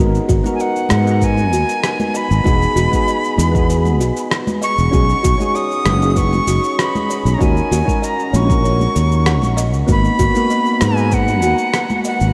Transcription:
Already playing: synth keys B3 D#4, kalimba F#4
0.00 fretless electric bass G#1, synth keys F#4 A#4
0.15 shaker
0.29 fretless electric bass G#1, kalimba F#4, kick, shaker
0.43 synth keys B3 D#4 F#4 A#4, high conga, shaker
0.54 flute G#5
0.60 kalimba D#5, flute F#5, shaker
0.76 shaker
0.89 fretless electric bass G#2, kalimba B4, cross-stick, high conga, shaker
1.04 synth keys B3 D#4, shaker
1.09 synth keys F#4 A#5
1.22 kalimba B4, flute G#5, kick, shaker
1.37 high conga, shaker
1.53 fretless electric bass D#2, kalimba F#4, shaker
1.69 shaker
1.83 kalimba B4, cross-stick, shaker
2.00 high conga, shaker
2.14 kalimba D#5, flute B5, shaker
2.31 fretless electric bass G#1, shaker
2.44 fretless electric bass E1, synth keys B3 D#4 F#4 G#4, kalimba F#4, kick, high conga, shaker
2.62 shaker
2.76 fretless electric bass E1, kalimba F#4, shaker
2.92 synth keys B3 D#4 F#4, kick, high conga, shaker
2.96 synth keys G#4
3.07 kalimba D#5, shaker
3.24 shaker
3.38 fretless electric bass E2, kalimba B4, high conga, shaker
3.52 synth keys B3 D#4, kick, shaker
3.56 synth keys F#4 G#4
3.70 kalimba B4, shaker
3.85 high conga, shaker
4.00 fretless electric bass B1, kalimba F#4, shaker
4.17 shaker
4.30 kalimba B4, cross-stick, shaker
4.47 high conga, shaker
4.62 kalimba D#5, flute C#6, shaker
4.78 fretless electric bass E1, shaker
4.91 fretless electric bass B1, synth keys C#4 D#4 F#4 G#4, kalimba F#4, kick, high conga, shaker
5.09 shaker
5.23 fretless electric bass B1, kalimba F#4, kick, shaker
5.38 synth keys C#4 D#4 F#4, high conga, shaker
5.42 synth keys G#4
5.55 kalimba C#5, flute D#6, shaker
5.71 shaker
5.86 fretless electric bass F#1, kalimba B4, cross-stick, high conga, shaker
5.97 synth keys C#4 D#4
6.02 synth keys F#4 G#4, shaker
6.10 flute D#6
6.16 kalimba B4, flute C#6, kick, shaker
6.33 high conga, shaker
6.47 fretless electric bass F#1, kalimba F#4, shaker
6.64 shaker
6.79 kalimba B4, flute B5, cross-stick, shaker
6.95 high conga, shaker
7.09 kalimba C#5, shaker
7.25 fretless electric bass B1, shaker
7.34 flute A#5
7.38 fretless electric bass D#2, synth keys C#4 D#4 F#4 A#4, kalimba F#4, kick, high conga, shaker
7.42 flute G#5
7.57 shaker
7.71 fretless electric bass D#2, kalimba F#4, shaker
7.85 synth keys C#4 D#4 F#4 A#4, kick, high conga
7.89 shaker
8.02 kalimba D#5, flute A#5, shaker
8.19 shaker
8.33 fretless electric bass A#1, kalimba C#5, flute C#6, high conga, shaker
8.45 synth keys C#4 D#4
8.50 synth keys F#4 A#4, kick, shaker
8.64 kalimba C#5, shaker
8.79 high conga, shaker
8.95 fretless electric bass D#2, kalimba A#4, shaker
9.12 shaker
9.26 kalimba F#5, cross-stick, shaker
9.42 fretless electric bass A#1, high conga, shaker
9.57 kalimba D#5, shaker
9.74 fretless electric bass C#2, shaker
9.87 fretless electric bass G#1, synth keys A#3 B3 D#4 F#4, kalimba F#4, kick, high conga, shaker
9.92 flute B5
10.05 shaker
10.19 fretless electric bass G#1, kalimba F#4, kick, shaker
10.34 synth keys A#3 B3 D#4 F#4, high conga, shaker
10.50 kalimba D#5, shaker
10.66 shaker
10.81 fretless electric bass G#2, kalimba B4, flute G#5, cross-stick, high conga, shaker
10.93 synth keys B3 D#4
10.97 synth keys F#4 A#5, shaker
11.11 kalimba B4, flute F#5, kick, shaker
11.28 high conga, shaker
11.42 fretless electric bass D#2, kalimba F#4, shaker
11.58 shaker
11.74 kalimba B4, cross-stick, shaker
11.90 high conga, shaker
12.04 kalimba D#5, flute F#5, shaker
12.20 fretless electric bass G#1, shaker

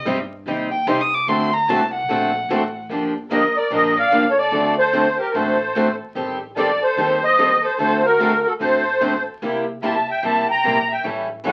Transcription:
0.05 upright bass G2, steel-string acoustic guitar C3 G3 C4 D#4 G4
0.46 upright bass D#2, steel-string acoustic guitar C3 G3 C4 D#4 G4
0.72 violin G5
0.87 upright bass C2, steel-string acoustic guitar C3 G3 C4 D#4 G4, violin C6
1.01 violin D#6
1.15 violin D6
1.27 upright bass D2, steel-string acoustic guitar D3 A3 C4 F#4 A4, violin C6
1.54 violin A#5
1.68 upright bass C2, steel-string acoustic guitar D3 A3 C4 F#4 A4, violin A5
1.94 violin F#5
2.08 upright bass A#1, steel-string acoustic guitar D3 A3 C4 F#4 A4
2.49 upright bass A1, steel-string acoustic guitar D3 A3 C4 F#4 A4
2.89 upright bass G1, steel-string acoustic guitar D3 F3 A#3 D4 G4
3.30 steel-string acoustic guitar D3 F3 A#3 D4 G4, violin A#4, accordion D#5
3.57 violin A#4, accordion D5
3.70 upright bass A#1, steel-string acoustic guitar D3 F3 A#3 D4 G4, violin A#4, accordion D#5
3.98 violin D5, accordion F5
4.11 upright bass C2, steel-string acoustic guitar D3 F3 A#3 D4 G4
4.29 violin A4, accordion C#5
4.38 violin A4, accordion D5
4.51 upright bass D2, steel-string acoustic guitar D3 A3 C4 F#4 A4
4.78 violin A4, accordion C5
4.93 steel-string acoustic guitar D3 A3 C4 F#4 A4
5.20 violin G4, accordion A#4
5.34 upright bass A1, steel-string acoustic guitar D3 A3 C4 F#4 A4, violin A4, accordion C5
5.75 steel-string acoustic guitar D3 A3 C4 F#4 A4
6.15 upright bass A1, steel-string acoustic guitar D#3 G3 C4 G4 A4
6.57 steel-string acoustic guitar D#3 G3 C4 G4 A4, violin A4, accordion D5
6.82 violin A4, accordion C5
6.96 upright bass D#2, steel-string acoustic guitar D#3 G3 C4 G4 A4
7.23 violin C5, accordion D#5
7.38 steel-string acoustic guitar D#3 G3 C4 G4 A4
7.64 violin A4, accordion C5
7.78 upright bass D2, steel-string acoustic guitar D3 A3 C4 F#4 A4, violin A4, accordion C5
8.05 violin F#4, accordion A#4
8.20 steel-string acoustic guitar D3 A3 C4 F#4 A4
8.47 violin F#4, accordion A4
8.60 upright bass A1, steel-string acoustic guitar D3 A3 C4 F#4 A4, violin A4, accordion C5
9.01 steel-string acoustic guitar D3 A3 C4 F#4 A4
9.42 upright bass C2, steel-string acoustic guitar C3 G3 A#3 E4 G4
9.83 steel-string acoustic guitar C3 G3 A#3 E4 G4, violin E5, accordion A5
10.09 violin E5, accordion G5
10.23 upright bass C2, steel-string acoustic guitar C3 G3 A#3 E4 G4, violin E5, accordion A5
10.50 violin G5, accordion A#5
10.64 upright bass A#1, steel-string acoustic guitar C3 G3 A#3 E4 G4
10.91 violin E5, accordion G5
11.04 upright bass A1, steel-string acoustic guitar E3 G3 C#4 E4 A4
11.44 steel-string acoustic guitar E3 G3 C#4 E4 A4, violin C#5, accordion F#5

